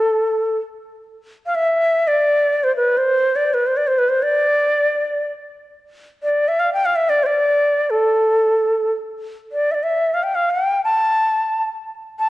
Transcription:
0.00 0.58 A4 medium
1.46 1.56 F5 medium
1.55 2.09 E5 medium
2.07 2.65 D5 medium
2.64 2.75 C5 medium
2.76 2.99 B4 medium
2.97 3.37 C5 medium
3.36 3.55 D5 medium
3.53 3.68 B4 medium
3.67 3.78 C5 medium
3.77 3.89 D5 medium
3.87 4.00 C5 medium
3.98 4.10 B4 medium
4.09 4.24 C5 medium
4.23 5.27 D5 medium
6.23 6.50 D5 medium
6.48 6.61 E5 medium
6.60 6.73 F5 medium
6.73 6.87 G5 medium
6.85 6.97 F5 medium
6.96 7.11 E5 medium
7.10 7.25 D5 medium
7.23 7.27 C5 medium
7.23 7.92 D5 medium
7.90 8.94 A4 medium
9.52 9.73 D5 medium
9.71 9.85 D5 medium
9.71 9.75 E5 medium
9.83 10.15 E5 medium
10.14 10.25 F5 medium
10.23 10.36 G5 medium
10.35 10.52 F5 medium
10.50 10.84 G5 medium
10.84 11.65 A5 medium
12.19 12.29 A5 medium

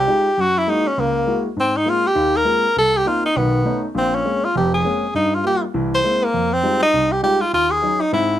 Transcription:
0.00 0.42 G4 medium
0.07 0.26 G#3 medium
0.07 0.26 D#4 medium
0.07 0.26 F4 soft
0.07 0.27 G4 medium
0.38 0.63 F#2 medium
0.38 0.59 F#4 loud
0.58 0.71 E4 medium
0.67 0.86 G#3 medium
0.67 0.86 A#3 soft
0.67 0.89 D#4 medium
0.67 0.86 E4 soft
0.67 0.86 F#4 medium
0.87 1.02 C#4 medium
0.97 1.22 C#2 medium
0.97 1.46 A#3 medium
1.27 1.45 G#3 medium
1.27 1.46 A#3 soft
1.27 1.46 E4 medium
1.27 1.46 F#4 medium
1.56 1.82 G#2 medium
1.56 1.79 C4 medium
1.77 1.91 D#4 medium
1.86 2.05 G#3 medium
1.86 2.05 A#3 soft
1.86 2.05 C4 medium
1.86 2.05 F4 medium
1.86 2.08 F4 medium
2.07 2.38 G4 loud
2.15 2.41 D#2 medium
2.15 2.41 D#3 medium
2.37 2.77 A#4 medium
2.45 2.64 G#3 medium
2.45 2.64 A#3 soft
2.45 2.64 C4 soft
2.45 2.64 F4 medium
2.76 3.01 C2 medium
2.76 2.99 A4 loud
2.98 3.09 G4 loud
3.06 3.24 A#3 medium
3.06 3.24 C4 soft
3.06 3.25 D#4 medium
3.06 3.24 F4 medium
3.26 3.39 D#4 medium
3.36 3.61 B1 medium
3.36 3.61 D#3 medium
3.36 3.84 B3 medium
3.65 3.84 A3 medium
3.65 3.84 B3 soft
3.65 3.84 C#4 soft
3.65 3.84 D#4 medium
3.95 4.20 A#1 medium
3.95 4.20 A#2 medium
3.95 4.16 C4 medium
4.15 4.46 C#4 medium
4.25 4.44 G#3 medium
4.25 4.44 A#3 soft
4.25 4.44 C4 soft
4.25 4.44 C#4 medium
4.45 4.55 F4 medium
4.56 4.80 F1 medium
4.56 4.80 F2 medium
4.56 4.72 G4 medium
4.74 5.12 G#4 medium
4.85 5.03 G#3 medium
4.85 5.03 A#3 soft
4.85 5.04 C4 soft
4.85 5.04 C#4 medium
5.14 5.39 G2 medium
5.14 5.36 D#4 medium
5.35 5.45 F4 medium
5.44 5.63 G3 medium
5.44 5.63 A#3 soft
5.44 5.63 F4 medium
5.44 5.62 G4 medium
5.74 5.99 C2 medium
5.74 5.99 E3 medium
5.95 6.26 C5 medium
6.04 6.23 G#3 medium
6.04 6.23 A#3 soft
6.04 6.23 C4 medium
6.04 6.23 E4 medium
6.24 6.54 A#3 medium
6.34 6.59 F2 medium
6.53 6.82 C4 medium
6.63 6.82 G3 medium
6.63 6.82 G#3 soft
6.63 6.82 D#4 soft
6.63 6.82 F4 medium
6.83 7.13 D#4 loud
6.93 7.18 C2 medium
7.12 7.23 G4 medium
7.23 7.42 G3 medium
7.23 7.42 G#3 medium
7.23 7.42 D#4 soft
7.23 7.42 F4 medium
7.23 7.42 G4 loud
7.41 7.52 F4 medium
7.53 7.78 D#2 medium
7.53 7.73 F4 loud
7.71 8.02 G#4 medium
7.82 8.01 F#3 medium
7.82 8.02 C#4 soft
7.82 8.02 D#4 medium
8.01 8.12 D#4 medium
8.12 8.38 G#2 medium
8.12 8.38 C4 medium
8.12 8.39 E4 medium

